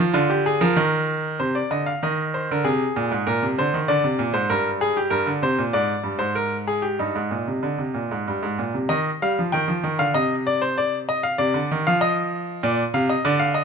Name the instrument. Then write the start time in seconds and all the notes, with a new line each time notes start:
grand piano
Already playing: F4
0.00 F3
0.14 D3 F4
0.30 G4
0.46 G#4
0.61 F3 A#4
0.76 D#3
1.40 C3 C5
1.55 D5
1.71 D3 D#5
1.86 F5
2.03 D#3 D#5
2.34 C5
2.51 D3 A#4
2.64 C3 G#4
2.96 A#2
3.11 G#2
3.27 A#2 A#4
3.43 C3
3.58 D3 C5
3.74 D#3
3.88 D3 D5
4.04 C3
4.19 A#2
4.33 G#2 C5
4.50 G2 A#4
4.81 G#4
4.97 G4
5.10 G2 A#4
5.27 D3
5.42 C3 C5
5.59 A#2
5.73 G#2 D5
6.04 G2
6.18 G#2 C5
6.35 A#4
6.67 G#4
6.82 G4
6.99 G2 D#4
7.15 G#2
7.31 A#2
7.47 C3
7.63 D3
7.78 C3
7.94 A#2
8.11 G#2
8.28 G2
8.43 G#2
8.59 A#2
8.74 C3
8.89 D#3 D#5
9.22 G3 F5
9.39 F3
9.52 D#3 G5
9.68 F3
9.84 D#3
9.99 D3 F5
10.14 C3 D#5
10.47 D5
10.62 C5
10.78 D5
11.09 D#5
11.23 F5
11.38 C3 D5
11.54 D3
11.71 D#3
11.87 F3 F5
12.01 D#5
12.63 A#2 D5
12.94 C3 F5
13.10 D#5
13.25 D3 D5
13.40 F5
13.54 D#5